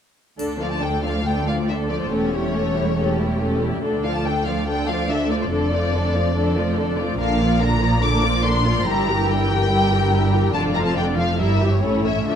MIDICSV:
0, 0, Header, 1, 7, 480
1, 0, Start_track
1, 0, Key_signature, -1, "minor"
1, 0, Tempo, 428266
1, 444, Time_signature, 4, 2, 24, 8
1, 5243, Tempo, 419287
1, 12443, Tempo, 437637
1, 13964, End_track
2, 0, Start_track
2, 0, Title_t, "Violin section"
2, 0, Program_c, 0, 48
2, 678, Note_on_c, 0, 77, 41
2, 792, Note_on_c, 0, 81, 44
2, 793, Note_off_c, 0, 77, 0
2, 908, Note_on_c, 0, 79, 49
2, 917, Note_off_c, 0, 81, 0
2, 1153, Note_on_c, 0, 77, 49
2, 1160, Note_off_c, 0, 79, 0
2, 1400, Note_off_c, 0, 77, 0
2, 1402, Note_on_c, 0, 79, 55
2, 1643, Note_on_c, 0, 77, 40
2, 1650, Note_off_c, 0, 79, 0
2, 1732, Note_off_c, 0, 77, 0
2, 1889, Note_on_c, 0, 76, 43
2, 1979, Note_off_c, 0, 76, 0
2, 2117, Note_on_c, 0, 74, 41
2, 2242, Note_off_c, 0, 74, 0
2, 2252, Note_on_c, 0, 72, 38
2, 2363, Note_on_c, 0, 73, 50
2, 2370, Note_off_c, 0, 72, 0
2, 4044, Note_off_c, 0, 73, 0
2, 4520, Note_on_c, 0, 77, 46
2, 4634, Note_off_c, 0, 77, 0
2, 4649, Note_on_c, 0, 81, 46
2, 4758, Note_on_c, 0, 79, 49
2, 4767, Note_off_c, 0, 81, 0
2, 4997, Note_on_c, 0, 77, 50
2, 5000, Note_off_c, 0, 79, 0
2, 5235, Note_on_c, 0, 79, 55
2, 5238, Note_off_c, 0, 77, 0
2, 5474, Note_off_c, 0, 79, 0
2, 5476, Note_on_c, 0, 77, 51
2, 5718, Note_on_c, 0, 76, 53
2, 5719, Note_off_c, 0, 77, 0
2, 5957, Note_on_c, 0, 74, 49
2, 5959, Note_off_c, 0, 76, 0
2, 6006, Note_off_c, 0, 74, 0
2, 6080, Note_on_c, 0, 72, 42
2, 6128, Note_off_c, 0, 72, 0
2, 6180, Note_on_c, 0, 74, 57
2, 7842, Note_off_c, 0, 74, 0
2, 8118, Note_on_c, 0, 77, 62
2, 8564, Note_off_c, 0, 77, 0
2, 8591, Note_on_c, 0, 82, 63
2, 9070, Note_on_c, 0, 86, 62
2, 9076, Note_off_c, 0, 82, 0
2, 9545, Note_on_c, 0, 84, 61
2, 9553, Note_off_c, 0, 86, 0
2, 10025, Note_off_c, 0, 84, 0
2, 10025, Note_on_c, 0, 82, 63
2, 10507, Note_on_c, 0, 79, 73
2, 10512, Note_off_c, 0, 82, 0
2, 11939, Note_on_c, 0, 81, 66
2, 11955, Note_off_c, 0, 79, 0
2, 12031, Note_off_c, 0, 81, 0
2, 12187, Note_on_c, 0, 82, 57
2, 12238, Note_off_c, 0, 82, 0
2, 12309, Note_on_c, 0, 81, 50
2, 12434, Note_off_c, 0, 81, 0
2, 12438, Note_on_c, 0, 79, 53
2, 12526, Note_off_c, 0, 79, 0
2, 12662, Note_on_c, 0, 77, 53
2, 12899, Note_off_c, 0, 77, 0
2, 12905, Note_on_c, 0, 76, 53
2, 13252, Note_on_c, 0, 73, 52
2, 13258, Note_off_c, 0, 76, 0
2, 13621, Note_off_c, 0, 73, 0
2, 13625, Note_on_c, 0, 76, 50
2, 13843, Note_off_c, 0, 76, 0
2, 13856, Note_on_c, 0, 76, 54
2, 13964, Note_off_c, 0, 76, 0
2, 13964, End_track
3, 0, Start_track
3, 0, Title_t, "Violin section"
3, 0, Program_c, 1, 48
3, 432, Note_on_c, 1, 62, 31
3, 433, Note_on_c, 1, 69, 30
3, 661, Note_off_c, 1, 62, 0
3, 662, Note_off_c, 1, 69, 0
3, 667, Note_on_c, 1, 65, 28
3, 670, Note_on_c, 1, 74, 27
3, 913, Note_on_c, 1, 69, 28
3, 915, Note_on_c, 1, 62, 28
3, 917, Note_off_c, 1, 65, 0
3, 918, Note_off_c, 1, 74, 0
3, 1156, Note_on_c, 1, 65, 27
3, 1159, Note_on_c, 1, 74, 26
3, 1162, Note_off_c, 1, 69, 0
3, 1163, Note_off_c, 1, 62, 0
3, 1402, Note_on_c, 1, 62, 27
3, 1404, Note_on_c, 1, 69, 28
3, 1406, Note_off_c, 1, 65, 0
3, 1407, Note_off_c, 1, 74, 0
3, 1633, Note_off_c, 1, 62, 0
3, 1633, Note_off_c, 1, 69, 0
3, 1649, Note_on_c, 1, 74, 28
3, 1650, Note_on_c, 1, 65, 27
3, 1892, Note_off_c, 1, 65, 0
3, 1892, Note_off_c, 1, 74, 0
3, 1901, Note_on_c, 1, 69, 30
3, 1905, Note_on_c, 1, 62, 30
3, 2132, Note_on_c, 1, 74, 30
3, 2136, Note_off_c, 1, 69, 0
3, 2136, Note_on_c, 1, 65, 31
3, 2138, Note_off_c, 1, 62, 0
3, 2366, Note_on_c, 1, 67, 31
3, 2367, Note_on_c, 1, 69, 29
3, 2372, Note_off_c, 1, 74, 0
3, 2374, Note_off_c, 1, 65, 0
3, 2593, Note_off_c, 1, 67, 0
3, 2593, Note_off_c, 1, 69, 0
3, 2605, Note_on_c, 1, 67, 30
3, 2611, Note_on_c, 1, 64, 29
3, 2831, Note_off_c, 1, 67, 0
3, 2839, Note_on_c, 1, 69, 30
3, 2844, Note_on_c, 1, 67, 32
3, 2849, Note_off_c, 1, 64, 0
3, 3068, Note_off_c, 1, 67, 0
3, 3078, Note_on_c, 1, 64, 30
3, 3080, Note_off_c, 1, 69, 0
3, 3081, Note_on_c, 1, 67, 29
3, 3299, Note_off_c, 1, 67, 0
3, 3313, Note_on_c, 1, 67, 31
3, 3314, Note_on_c, 1, 69, 28
3, 3321, Note_off_c, 1, 64, 0
3, 3543, Note_off_c, 1, 67, 0
3, 3544, Note_off_c, 1, 69, 0
3, 3557, Note_on_c, 1, 64, 29
3, 3558, Note_on_c, 1, 67, 30
3, 3783, Note_off_c, 1, 67, 0
3, 3797, Note_on_c, 1, 67, 30
3, 3801, Note_on_c, 1, 69, 28
3, 3803, Note_off_c, 1, 64, 0
3, 4038, Note_off_c, 1, 67, 0
3, 4045, Note_off_c, 1, 69, 0
3, 4051, Note_on_c, 1, 67, 31
3, 4052, Note_on_c, 1, 64, 29
3, 4282, Note_on_c, 1, 62, 34
3, 4283, Note_on_c, 1, 69, 31
3, 4290, Note_off_c, 1, 64, 0
3, 4290, Note_off_c, 1, 67, 0
3, 4507, Note_off_c, 1, 62, 0
3, 4508, Note_off_c, 1, 69, 0
3, 4526, Note_on_c, 1, 74, 29
3, 4527, Note_on_c, 1, 65, 34
3, 4765, Note_off_c, 1, 65, 0
3, 4765, Note_off_c, 1, 74, 0
3, 4774, Note_on_c, 1, 62, 31
3, 4782, Note_on_c, 1, 69, 32
3, 5008, Note_off_c, 1, 62, 0
3, 5008, Note_on_c, 1, 74, 31
3, 5012, Note_off_c, 1, 69, 0
3, 5013, Note_on_c, 1, 65, 29
3, 5244, Note_off_c, 1, 74, 0
3, 5246, Note_off_c, 1, 65, 0
3, 5252, Note_on_c, 1, 62, 31
3, 5252, Note_on_c, 1, 69, 36
3, 5471, Note_off_c, 1, 62, 0
3, 5471, Note_off_c, 1, 69, 0
3, 5492, Note_on_c, 1, 65, 31
3, 5494, Note_on_c, 1, 74, 32
3, 5726, Note_off_c, 1, 65, 0
3, 5728, Note_off_c, 1, 74, 0
3, 5732, Note_on_c, 1, 62, 33
3, 5737, Note_on_c, 1, 69, 33
3, 5966, Note_off_c, 1, 62, 0
3, 5967, Note_on_c, 1, 74, 36
3, 5969, Note_off_c, 1, 69, 0
3, 5972, Note_on_c, 1, 65, 36
3, 6200, Note_on_c, 1, 69, 36
3, 6203, Note_on_c, 1, 62, 33
3, 6204, Note_off_c, 1, 74, 0
3, 6206, Note_off_c, 1, 65, 0
3, 6424, Note_off_c, 1, 69, 0
3, 6426, Note_off_c, 1, 62, 0
3, 6439, Note_on_c, 1, 65, 38
3, 6441, Note_on_c, 1, 74, 36
3, 6680, Note_off_c, 1, 65, 0
3, 6680, Note_off_c, 1, 74, 0
3, 6681, Note_on_c, 1, 69, 34
3, 6687, Note_on_c, 1, 62, 36
3, 6920, Note_off_c, 1, 69, 0
3, 6923, Note_off_c, 1, 62, 0
3, 6923, Note_on_c, 1, 65, 36
3, 6924, Note_on_c, 1, 74, 35
3, 7158, Note_on_c, 1, 69, 38
3, 7161, Note_on_c, 1, 62, 39
3, 7162, Note_off_c, 1, 65, 0
3, 7162, Note_off_c, 1, 74, 0
3, 7384, Note_off_c, 1, 69, 0
3, 7385, Note_off_c, 1, 62, 0
3, 7396, Note_on_c, 1, 74, 34
3, 7401, Note_on_c, 1, 65, 36
3, 7630, Note_on_c, 1, 69, 34
3, 7632, Note_on_c, 1, 62, 35
3, 7641, Note_off_c, 1, 74, 0
3, 7644, Note_off_c, 1, 65, 0
3, 7865, Note_on_c, 1, 65, 38
3, 7868, Note_on_c, 1, 74, 40
3, 7879, Note_off_c, 1, 69, 0
3, 7880, Note_off_c, 1, 62, 0
3, 8112, Note_on_c, 1, 62, 40
3, 8113, Note_off_c, 1, 65, 0
3, 8114, Note_on_c, 1, 70, 38
3, 8115, Note_off_c, 1, 74, 0
3, 8337, Note_off_c, 1, 62, 0
3, 8338, Note_off_c, 1, 70, 0
3, 8348, Note_on_c, 1, 74, 42
3, 8349, Note_on_c, 1, 65, 37
3, 8587, Note_on_c, 1, 62, 39
3, 8588, Note_on_c, 1, 70, 43
3, 8594, Note_off_c, 1, 74, 0
3, 8595, Note_off_c, 1, 65, 0
3, 8831, Note_on_c, 1, 65, 37
3, 8831, Note_on_c, 1, 74, 39
3, 8835, Note_off_c, 1, 62, 0
3, 8835, Note_off_c, 1, 70, 0
3, 9067, Note_on_c, 1, 62, 44
3, 9067, Note_on_c, 1, 70, 39
3, 9075, Note_off_c, 1, 65, 0
3, 9075, Note_off_c, 1, 74, 0
3, 9295, Note_off_c, 1, 62, 0
3, 9295, Note_off_c, 1, 70, 0
3, 9308, Note_on_c, 1, 74, 35
3, 9309, Note_on_c, 1, 65, 39
3, 9544, Note_on_c, 1, 62, 39
3, 9544, Note_on_c, 1, 70, 39
3, 9552, Note_off_c, 1, 74, 0
3, 9553, Note_off_c, 1, 65, 0
3, 9788, Note_off_c, 1, 62, 0
3, 9788, Note_off_c, 1, 70, 0
3, 9789, Note_on_c, 1, 74, 41
3, 9794, Note_on_c, 1, 65, 42
3, 10029, Note_off_c, 1, 74, 0
3, 10031, Note_off_c, 1, 65, 0
3, 10041, Note_on_c, 1, 70, 45
3, 10045, Note_on_c, 1, 67, 46
3, 10260, Note_off_c, 1, 70, 0
3, 10262, Note_off_c, 1, 67, 0
3, 10288, Note_on_c, 1, 67, 41
3, 10290, Note_on_c, 1, 70, 40
3, 10508, Note_off_c, 1, 70, 0
3, 10509, Note_off_c, 1, 67, 0
3, 10522, Note_on_c, 1, 70, 39
3, 10523, Note_on_c, 1, 67, 43
3, 10755, Note_off_c, 1, 67, 0
3, 10755, Note_off_c, 1, 70, 0
3, 10768, Note_on_c, 1, 67, 40
3, 10769, Note_on_c, 1, 70, 42
3, 10993, Note_off_c, 1, 67, 0
3, 11002, Note_off_c, 1, 70, 0
3, 11007, Note_on_c, 1, 67, 47
3, 11015, Note_on_c, 1, 70, 43
3, 11226, Note_off_c, 1, 67, 0
3, 11230, Note_off_c, 1, 70, 0
3, 11243, Note_on_c, 1, 67, 41
3, 11244, Note_on_c, 1, 70, 42
3, 11453, Note_off_c, 1, 67, 0
3, 11457, Note_off_c, 1, 70, 0
3, 11467, Note_on_c, 1, 67, 43
3, 11471, Note_on_c, 1, 70, 39
3, 11697, Note_off_c, 1, 70, 0
3, 11703, Note_off_c, 1, 67, 0
3, 11711, Note_on_c, 1, 70, 41
3, 11716, Note_on_c, 1, 67, 40
3, 11949, Note_on_c, 1, 65, 43
3, 11950, Note_on_c, 1, 74, 41
3, 11954, Note_off_c, 1, 70, 0
3, 11957, Note_off_c, 1, 67, 0
3, 12177, Note_off_c, 1, 65, 0
3, 12178, Note_off_c, 1, 74, 0
3, 12192, Note_on_c, 1, 69, 38
3, 12200, Note_on_c, 1, 77, 39
3, 12434, Note_on_c, 1, 65, 35
3, 12436, Note_on_c, 1, 74, 37
3, 12439, Note_off_c, 1, 69, 0
3, 12443, Note_off_c, 1, 77, 0
3, 12669, Note_on_c, 1, 77, 36
3, 12672, Note_off_c, 1, 65, 0
3, 12673, Note_on_c, 1, 69, 34
3, 12674, Note_off_c, 1, 74, 0
3, 12908, Note_off_c, 1, 77, 0
3, 12910, Note_off_c, 1, 69, 0
3, 12911, Note_on_c, 1, 64, 41
3, 12912, Note_on_c, 1, 70, 38
3, 13132, Note_off_c, 1, 64, 0
3, 13132, Note_off_c, 1, 70, 0
3, 13143, Note_on_c, 1, 67, 30
3, 13145, Note_off_c, 1, 67, 0
3, 13145, Note_on_c, 1, 67, 36
3, 13385, Note_on_c, 1, 61, 36
3, 13386, Note_off_c, 1, 67, 0
3, 13389, Note_on_c, 1, 69, 33
3, 13611, Note_off_c, 1, 61, 0
3, 13613, Note_off_c, 1, 69, 0
3, 13616, Note_on_c, 1, 64, 35
3, 13618, Note_on_c, 1, 73, 33
3, 13872, Note_off_c, 1, 64, 0
3, 13873, Note_off_c, 1, 73, 0
3, 13879, Note_on_c, 1, 62, 35
3, 13883, Note_on_c, 1, 69, 35
3, 13964, Note_off_c, 1, 62, 0
3, 13964, Note_off_c, 1, 69, 0
3, 13964, End_track
4, 0, Start_track
4, 0, Title_t, "Viola section"
4, 0, Program_c, 2, 48
4, 430, Note_on_c, 2, 62, 29
4, 431, Note_on_c, 2, 50, 28
4, 660, Note_off_c, 2, 50, 0
4, 660, Note_off_c, 2, 62, 0
4, 674, Note_on_c, 2, 57, 28
4, 676, Note_on_c, 2, 53, 26
4, 914, Note_on_c, 2, 50, 29
4, 915, Note_on_c, 2, 62, 30
4, 921, Note_off_c, 2, 53, 0
4, 921, Note_off_c, 2, 57, 0
4, 1154, Note_on_c, 2, 53, 27
4, 1158, Note_on_c, 2, 57, 29
4, 1163, Note_off_c, 2, 50, 0
4, 1164, Note_off_c, 2, 62, 0
4, 1397, Note_on_c, 2, 50, 30
4, 1402, Note_on_c, 2, 62, 30
4, 1405, Note_off_c, 2, 53, 0
4, 1407, Note_off_c, 2, 57, 0
4, 1630, Note_off_c, 2, 50, 0
4, 1633, Note_off_c, 2, 62, 0
4, 1642, Note_on_c, 2, 57, 26
4, 1644, Note_on_c, 2, 53, 27
4, 1880, Note_on_c, 2, 62, 30
4, 1883, Note_on_c, 2, 50, 30
4, 1888, Note_off_c, 2, 57, 0
4, 1889, Note_off_c, 2, 53, 0
4, 2114, Note_on_c, 2, 57, 32
4, 2117, Note_on_c, 2, 53, 32
4, 2125, Note_off_c, 2, 62, 0
4, 2127, Note_off_c, 2, 50, 0
4, 2339, Note_off_c, 2, 57, 0
4, 2353, Note_on_c, 2, 57, 32
4, 2355, Note_on_c, 2, 61, 31
4, 2364, Note_off_c, 2, 53, 0
4, 2581, Note_off_c, 2, 57, 0
4, 2587, Note_off_c, 2, 61, 0
4, 2594, Note_on_c, 2, 55, 28
4, 2594, Note_on_c, 2, 57, 28
4, 2832, Note_off_c, 2, 57, 0
4, 2841, Note_off_c, 2, 55, 0
4, 2845, Note_on_c, 2, 57, 29
4, 2847, Note_on_c, 2, 61, 33
4, 3071, Note_off_c, 2, 57, 0
4, 3084, Note_off_c, 2, 61, 0
4, 3085, Note_on_c, 2, 57, 28
4, 3087, Note_on_c, 2, 55, 30
4, 3308, Note_off_c, 2, 57, 0
4, 3321, Note_on_c, 2, 57, 32
4, 3324, Note_on_c, 2, 61, 31
4, 3325, Note_off_c, 2, 55, 0
4, 3548, Note_off_c, 2, 57, 0
4, 3549, Note_off_c, 2, 61, 0
4, 3567, Note_on_c, 2, 55, 29
4, 3568, Note_on_c, 2, 57, 28
4, 3790, Note_off_c, 2, 57, 0
4, 3804, Note_on_c, 2, 57, 31
4, 3804, Note_on_c, 2, 61, 32
4, 3808, Note_off_c, 2, 55, 0
4, 4031, Note_off_c, 2, 57, 0
4, 4042, Note_on_c, 2, 55, 32
4, 4045, Note_on_c, 2, 57, 31
4, 4047, Note_off_c, 2, 61, 0
4, 4275, Note_on_c, 2, 62, 31
4, 4279, Note_on_c, 2, 50, 30
4, 4285, Note_off_c, 2, 55, 0
4, 4287, Note_off_c, 2, 57, 0
4, 4504, Note_off_c, 2, 62, 0
4, 4505, Note_off_c, 2, 50, 0
4, 4522, Note_on_c, 2, 57, 30
4, 4524, Note_on_c, 2, 53, 29
4, 4762, Note_on_c, 2, 62, 35
4, 4763, Note_off_c, 2, 57, 0
4, 4764, Note_off_c, 2, 53, 0
4, 4770, Note_on_c, 2, 50, 32
4, 4997, Note_on_c, 2, 53, 32
4, 5001, Note_on_c, 2, 57, 32
4, 5002, Note_off_c, 2, 62, 0
4, 5006, Note_off_c, 2, 50, 0
4, 5236, Note_on_c, 2, 50, 34
4, 5238, Note_off_c, 2, 53, 0
4, 5240, Note_off_c, 2, 57, 0
4, 5240, Note_on_c, 2, 62, 34
4, 5462, Note_off_c, 2, 50, 0
4, 5464, Note_off_c, 2, 62, 0
4, 5469, Note_on_c, 2, 53, 31
4, 5469, Note_on_c, 2, 57, 33
4, 5714, Note_on_c, 2, 50, 33
4, 5715, Note_off_c, 2, 53, 0
4, 5715, Note_off_c, 2, 57, 0
4, 5718, Note_on_c, 2, 62, 33
4, 5949, Note_on_c, 2, 53, 35
4, 5951, Note_on_c, 2, 57, 34
4, 5957, Note_off_c, 2, 50, 0
4, 5959, Note_off_c, 2, 62, 0
4, 6194, Note_on_c, 2, 50, 34
4, 6195, Note_off_c, 2, 53, 0
4, 6196, Note_off_c, 2, 57, 0
4, 6199, Note_on_c, 2, 62, 33
4, 6421, Note_off_c, 2, 50, 0
4, 6424, Note_off_c, 2, 62, 0
4, 6430, Note_on_c, 2, 53, 34
4, 6437, Note_on_c, 2, 57, 34
4, 6674, Note_on_c, 2, 50, 34
4, 6674, Note_on_c, 2, 62, 38
4, 6675, Note_off_c, 2, 53, 0
4, 6679, Note_off_c, 2, 57, 0
4, 6913, Note_on_c, 2, 53, 36
4, 6915, Note_on_c, 2, 57, 34
4, 6916, Note_off_c, 2, 50, 0
4, 6916, Note_off_c, 2, 62, 0
4, 7157, Note_off_c, 2, 53, 0
4, 7158, Note_off_c, 2, 57, 0
4, 7164, Note_on_c, 2, 62, 40
4, 7166, Note_on_c, 2, 50, 40
4, 7387, Note_off_c, 2, 62, 0
4, 7388, Note_off_c, 2, 50, 0
4, 7401, Note_on_c, 2, 53, 34
4, 7406, Note_on_c, 2, 57, 35
4, 7644, Note_off_c, 2, 53, 0
4, 7647, Note_off_c, 2, 57, 0
4, 7657, Note_on_c, 2, 62, 36
4, 7658, Note_on_c, 2, 50, 38
4, 7882, Note_on_c, 2, 57, 41
4, 7883, Note_on_c, 2, 53, 40
4, 7892, Note_off_c, 2, 62, 0
4, 7893, Note_off_c, 2, 50, 0
4, 8117, Note_on_c, 2, 62, 39
4, 8122, Note_off_c, 2, 53, 0
4, 8122, Note_off_c, 2, 57, 0
4, 8123, Note_on_c, 2, 50, 37
4, 8340, Note_off_c, 2, 62, 0
4, 8343, Note_off_c, 2, 50, 0
4, 8360, Note_on_c, 2, 53, 37
4, 8365, Note_on_c, 2, 58, 37
4, 8600, Note_off_c, 2, 53, 0
4, 8603, Note_off_c, 2, 58, 0
4, 8606, Note_on_c, 2, 50, 43
4, 8606, Note_on_c, 2, 62, 41
4, 8836, Note_on_c, 2, 58, 42
4, 8837, Note_on_c, 2, 53, 42
4, 8844, Note_off_c, 2, 62, 0
4, 8845, Note_off_c, 2, 50, 0
4, 9074, Note_on_c, 2, 62, 42
4, 9076, Note_on_c, 2, 50, 46
4, 9078, Note_off_c, 2, 53, 0
4, 9078, Note_off_c, 2, 58, 0
4, 9299, Note_off_c, 2, 62, 0
4, 9300, Note_off_c, 2, 50, 0
4, 9317, Note_on_c, 2, 58, 38
4, 9318, Note_on_c, 2, 53, 39
4, 9557, Note_off_c, 2, 53, 0
4, 9557, Note_off_c, 2, 58, 0
4, 9557, Note_on_c, 2, 62, 39
4, 9558, Note_on_c, 2, 50, 39
4, 9792, Note_on_c, 2, 53, 42
4, 9793, Note_on_c, 2, 58, 40
4, 9794, Note_off_c, 2, 62, 0
4, 9795, Note_off_c, 2, 50, 0
4, 10030, Note_off_c, 2, 53, 0
4, 10031, Note_off_c, 2, 58, 0
4, 10034, Note_on_c, 2, 55, 42
4, 10037, Note_on_c, 2, 64, 41
4, 10256, Note_off_c, 2, 55, 0
4, 10258, Note_off_c, 2, 64, 0
4, 10271, Note_on_c, 2, 52, 41
4, 10277, Note_on_c, 2, 67, 37
4, 10512, Note_on_c, 2, 55, 43
4, 10514, Note_on_c, 2, 64, 41
4, 10515, Note_off_c, 2, 52, 0
4, 10517, Note_off_c, 2, 67, 0
4, 10750, Note_on_c, 2, 67, 42
4, 10752, Note_on_c, 2, 52, 38
4, 10754, Note_off_c, 2, 55, 0
4, 10755, Note_off_c, 2, 64, 0
4, 10991, Note_on_c, 2, 55, 44
4, 10992, Note_off_c, 2, 67, 0
4, 10994, Note_off_c, 2, 52, 0
4, 10994, Note_on_c, 2, 64, 44
4, 11218, Note_off_c, 2, 55, 0
4, 11219, Note_off_c, 2, 64, 0
4, 11232, Note_on_c, 2, 67, 39
4, 11235, Note_on_c, 2, 52, 39
4, 11469, Note_on_c, 2, 55, 44
4, 11471, Note_on_c, 2, 64, 40
4, 11477, Note_off_c, 2, 67, 0
4, 11478, Note_off_c, 2, 52, 0
4, 11714, Note_off_c, 2, 55, 0
4, 11714, Note_on_c, 2, 67, 41
4, 11716, Note_off_c, 2, 64, 0
4, 11719, Note_on_c, 2, 52, 40
4, 11950, Note_on_c, 2, 50, 43
4, 11953, Note_on_c, 2, 62, 41
4, 11956, Note_off_c, 2, 67, 0
4, 11958, Note_off_c, 2, 52, 0
4, 12178, Note_off_c, 2, 50, 0
4, 12179, Note_off_c, 2, 62, 0
4, 12194, Note_on_c, 2, 65, 38
4, 12197, Note_on_c, 2, 53, 36
4, 12429, Note_on_c, 2, 62, 41
4, 12431, Note_on_c, 2, 50, 41
4, 12440, Note_off_c, 2, 65, 0
4, 12442, Note_off_c, 2, 53, 0
4, 12670, Note_off_c, 2, 62, 0
4, 12671, Note_off_c, 2, 50, 0
4, 12672, Note_on_c, 2, 65, 37
4, 12674, Note_on_c, 2, 53, 37
4, 12908, Note_on_c, 2, 55, 39
4, 12908, Note_on_c, 2, 64, 41
4, 12909, Note_off_c, 2, 65, 0
4, 12910, Note_off_c, 2, 53, 0
4, 13130, Note_off_c, 2, 55, 0
4, 13130, Note_off_c, 2, 64, 0
4, 13140, Note_on_c, 2, 52, 34
4, 13144, Note_on_c, 2, 67, 35
4, 13375, Note_on_c, 2, 61, 35
4, 13382, Note_on_c, 2, 64, 34
4, 13383, Note_off_c, 2, 52, 0
4, 13385, Note_off_c, 2, 67, 0
4, 13606, Note_off_c, 2, 61, 0
4, 13609, Note_off_c, 2, 64, 0
4, 13617, Note_on_c, 2, 57, 36
4, 13623, Note_on_c, 2, 61, 32
4, 13872, Note_off_c, 2, 57, 0
4, 13873, Note_on_c, 2, 53, 36
4, 13875, Note_off_c, 2, 61, 0
4, 13875, Note_on_c, 2, 62, 33
4, 13964, Note_off_c, 2, 53, 0
4, 13964, Note_off_c, 2, 62, 0
4, 13964, End_track
5, 0, Start_track
5, 0, Title_t, "Cello section"
5, 0, Program_c, 3, 48
5, 440, Note_on_c, 3, 38, 33
5, 2325, Note_off_c, 3, 38, 0
5, 2371, Note_on_c, 3, 40, 36
5, 4249, Note_off_c, 3, 40, 0
5, 4285, Note_on_c, 3, 38, 39
5, 6161, Note_off_c, 3, 38, 0
5, 6197, Note_on_c, 3, 41, 37
5, 8083, Note_off_c, 3, 41, 0
5, 8125, Note_on_c, 3, 46, 44
5, 9994, Note_off_c, 3, 46, 0
5, 10040, Note_on_c, 3, 43, 52
5, 11924, Note_off_c, 3, 43, 0
5, 11959, Note_on_c, 3, 41, 48
5, 12893, Note_off_c, 3, 41, 0
5, 12906, Note_on_c, 3, 43, 43
5, 13381, Note_on_c, 3, 45, 43
5, 13385, Note_off_c, 3, 43, 0
5, 13875, Note_off_c, 3, 45, 0
5, 13875, Note_on_c, 3, 50, 38
5, 13964, Note_off_c, 3, 50, 0
5, 13964, End_track
6, 0, Start_track
6, 0, Title_t, "Double bass section"
6, 0, Program_c, 4, 48
6, 441, Note_on_c, 4, 38, 36
6, 2326, Note_off_c, 4, 38, 0
6, 2367, Note_on_c, 4, 28, 37
6, 4247, Note_off_c, 4, 28, 0
6, 4281, Note_on_c, 4, 38, 43
6, 6159, Note_off_c, 4, 38, 0
6, 6201, Note_on_c, 4, 29, 44
6, 8085, Note_off_c, 4, 29, 0
6, 8130, Note_on_c, 4, 34, 51
6, 9997, Note_off_c, 4, 34, 0
6, 10043, Note_on_c, 4, 31, 53
6, 11926, Note_off_c, 4, 31, 0
6, 11956, Note_on_c, 4, 29, 52
6, 12892, Note_off_c, 4, 29, 0
6, 12907, Note_on_c, 4, 31, 42
6, 13378, Note_on_c, 4, 33, 41
6, 13385, Note_off_c, 4, 31, 0
6, 13866, Note_on_c, 4, 38, 40
6, 13874, Note_off_c, 4, 33, 0
6, 13964, Note_off_c, 4, 38, 0
6, 13964, End_track
7, 0, Start_track
7, 0, Title_t, "Drums"
7, 440, Note_on_c, 9, 81, 25
7, 552, Note_off_c, 9, 81, 0
7, 13964, End_track
0, 0, End_of_file